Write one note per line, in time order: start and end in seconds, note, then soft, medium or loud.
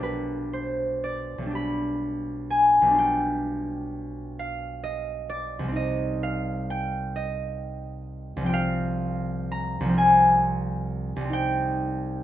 0.00 1.37 B1 soft
0.00 1.41 G3 soft
0.00 1.45 D4 soft
0.00 1.50 G4 soft
0.00 0.38 A#4 medium
0.00 3.93 B4 medium
0.53 1.40 C5 medium
1.04 4.94 D5 medium
1.38 2.80 B1 soft
1.38 2.85 G3 soft
1.46 2.89 D4 soft
1.51 5.41 G4 soft
1.55 5.45 B5 medium
2.50 3.31 G#5 medium
2.82 5.71 B1 soft
2.87 5.62 G3 soft
2.87 5.76 D4 soft
2.95 5.78 F4 soft
2.95 6.69 G5 medium
4.39 5.80 F5 medium
4.84 5.62 D#5 medium
5.30 5.80 D5 medium
5.59 8.35 C2 soft
5.63 8.50 G3 soft
5.68 8.43 C4 soft
5.68 8.55 D#4 soft
5.76 7.15 D#5 medium
6.23 7.02 F5 medium
6.70 8.45 G5 medium
7.16 8.57 D#5 medium
8.37 9.79 C2 soft
8.41 9.83 F3 soft
8.41 9.88 C4 soft
8.46 9.93 F4 soft
8.46 8.58 G5 medium
8.54 11.38 F5 medium
9.52 10.29 A#5 medium
9.81 11.15 C2 medium
9.85 11.32 F3 soft
9.89 11.24 C4 soft
9.94 11.36 F4 soft
9.98 11.38 G#5 medium
11.16 12.23 C2 soft
11.21 12.23 G3 soft
11.25 12.23 C4 soft
11.29 12.23 D#4 soft
11.29 12.23 G5 medium